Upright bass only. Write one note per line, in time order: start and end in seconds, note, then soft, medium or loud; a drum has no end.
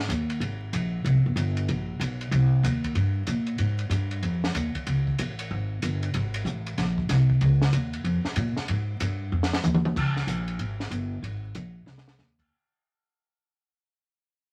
0.09 0.40 D#2 medium
0.40 0.72 G#1 medium
0.73 1.04 A#1 medium
1.04 1.16 C2 medium
1.15 1.25 G#1 medium
1.26 1.35 G1 medium
1.36 1.67 G1 medium
1.69 1.99 A#1 medium
2.00 2.31 B1 medium
2.31 2.63 C2 medium
2.63 2.95 D#2 medium
2.95 3.27 G2 medium
3.28 3.58 A#2 medium
3.59 3.89 G#2 medium
3.90 4.21 G2 medium
4.22 4.54 F2 medium
4.55 4.74 D#2 medium
4.75 muted upright bass stroke soft
4.87 5.18 C#2 medium
5.19 5.50 A1 medium
5.51 5.82 G#1 medium
5.83 6.13 G1 medium
6.14 6.44 G#1 medium
6.45 6.76 A1 medium
6.78 7.08 A#1 medium
7.09 7.40 C2 medium
7.41 7.72 C#2 medium
7.73 8.04 D#2 medium
8.04 8.23 F2 medium
8.24 muted upright bass stroke soft
8.36 8.55 A#2 medium
8.57 muted upright bass stroke soft
8.69 9.00 G#2 medium
9.01 9.31 G2 medium
9.32 9.63 F2 medium
9.64 9.95 D#2 medium
9.96 10.27 C#2 medium
10.27 10.58 A#1 medium
10.59 10.90 G#1 medium
10.91 11.22 G1 medium
11.23 11.54 G#1 medium
11.55 11.86 A#1 medium
11.86 12.17 C2 medium
12.18 12.49 D#2 medium